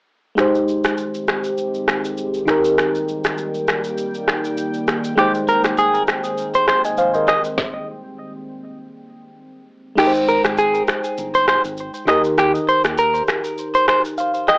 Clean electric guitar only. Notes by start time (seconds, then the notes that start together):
5.19 G4
5.49 A#4
5.79 G#4
6.55 C5
6.68 C5
7.28 D#5
9.99 G4
10.29 A#4
10.59 G#4
11.35 C5
11.49 C5
12.09 D#5
12.39 G4
12.69 C5
12.99 A#4
13.75 C5
13.89 C5
14.49 D#5